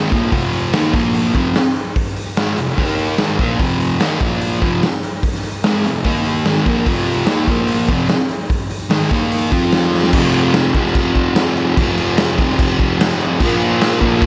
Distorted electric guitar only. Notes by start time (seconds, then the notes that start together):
Already playing: G#2 D#3 G#3
0.12 A#2 F3 A#3
0.32 F2 C3 F3
0.73 D#3 A#3 D#4
0.94 A#2 F3 A#3
1.34 F2 C3 F3
2.37 G#2 D#3 G#3
2.57 F2 C3
2.76 D#3 A#3 D#4
3.17 G#2 D#3 G#3
3.39 A#2 F3 A#3
3.59 F2 C3 F3
3.99 D#3 A#3 D#4
4.20 A#2 F3 A#3
4.61 F2 C3 F3
5.64 G#2 D#3 G#3
5.85 F2 C3
6.04 D#3 A#3 D#4
6.46 G#2 D#3 G#3
6.66 A#2 F3 A#3
6.86 F2 C3 F3
7.27 D#3 A#3 D#4
7.48 A#2 F3 A#3
7.89 F2 C3 F3
8.90 G#2 D#3 G#3
9.11 D#3 A#3 D#4
9.52 F3 C4 F4
10.12 F2 C3
10.18 F3
10.74 C3 F3
10.79 F2
11.77 F2 C3
11.82 F3
12.37 C3 F3
12.43 F2
13.40 A#2 F3
13.45 A#3
14.01 F3 A#3
14.06 A#2